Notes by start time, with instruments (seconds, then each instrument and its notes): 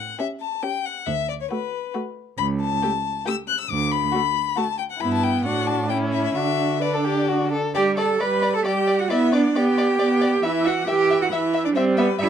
Already playing: cello A2, violin F#5
0.19 viola C#4, violin G4 E5
0.40 violin A5
0.63 viola C#4, violin G4 G5
0.85 violin F#5
1.06 cello D2, violin E5
1.29 violin D5
1.41 violin C#5
1.51 viola A3, violin F#4 B4
1.94 viola A3, violin F#4
2.38 cello C#2, violin B5
2.60 violin A5
2.82 viola A3, violin G4
3.26 viola A3, violin G4 E6
3.48 violin F#6
3.60 violin E6
3.70 cello D2, violin D6
3.92 violin B5
4.12 viola A3, violin F#4
4.56 viola A3, violin F#4 A5
4.78 violin G5
4.91 violin F#5
4.99 cello G2, viola B3, violin E4 B5
5.14 violin A5
5.23 violin G5
5.44 cello A2, viola D4, violin F#4 F#5
5.67 violin A5
5.89 viola C#4, violin E4 G5
6.12 violin E5
6.24 violin E5
6.34 cello D3, viola D4, violin F#4 E5
6.81 viola D4, violin B4 D5
6.94 violin A4
7.05 violin G4
7.28 violin F#4
7.52 violin A4
7.75 viola G3, cello G4, violin D5 G5
7.97 cello A4, violin D5 A5
8.20 viola G3, cello B4, violin D5 B5
8.42 violin D5
8.54 cello A4, violin A5
8.65 viola G3, cello G4, violin D5 G5
8.87 violin D5
8.98 cello F#4, violin F#5
9.10 viola B3, cello E4, violin D5 E5
9.32 cello D4, violin D5
9.56 viola B3, cello G4, violin D5 G5
9.78 violin D5
9.99 viola B3, violin D5
10.21 violin D5
10.43 viola E3, cello E4, violin E5
10.65 cello F#4, violin E5 F#5
10.87 viola E3, cello G4, violin E5 G5
11.10 violin E5
11.22 cello F#4, violin F#5
11.32 viola E3, cello E4, violin E5
11.54 violin E5
11.65 cello D4, violin D5
11.75 viola G3, cello C4, violin C5 E5
11.97 cello B3, violin B4 E5
12.19 viola G3, cello E4, violin E5